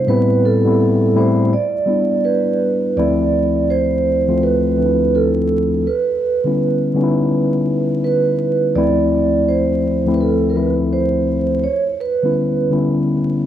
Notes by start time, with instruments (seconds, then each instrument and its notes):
0.07 tine electric piano A2 G3 B3 C4 E4, vibraphone B4
0.45 vibraphone A4
0.64 tine electric piano A2 G3 B3 C4 E4
1.13 tine electric piano A2 G3 A3 C4 E4
1.18 vibraphone C5
1.53 vibraphone D5
1.86 tine electric piano G3 B3 D4 E4
2.25 vibraphone B4
2.96 tine electric piano D2 F3 A3 C4 E4, vibraphone D5
3.70 vibraphone C5
4.27 tine electric piano D2 F3 A3 C4 F4
4.43 vibraphone B4
4.76 tine electric piano D2 F3 A3 C4 D4
4.86 tine electric piano E4
5.15 vibraphone A4
5.87 vibraphone B4
6.44 tine electric piano D3 G3 B3 C#4 E4
6.94 tine electric piano D3 G3 B3 C#4 D#4
7.03 tine electric piano E4
8.04 vibraphone B4
8.75 tine electric piano D2 F3 A3 C4 E4, vibraphone D5
9.48 vibraphone C5
10.05 tine electric piano D2 F3 A3 C4 E4
10.14 vibraphone B4
10.20 vibraphone A4
10.50 vibraphone A#4
10.55 tine electric piano D2 F3 A3 C4 E4, vibraphone B4
10.93 vibraphone C5
11.64 vibraphone C#5
12.00 vibraphone B4
12.23 tine electric piano D3 G3 B3 C#4 E4
12.70 tine electric piano D3 G3 B3 C#4 E4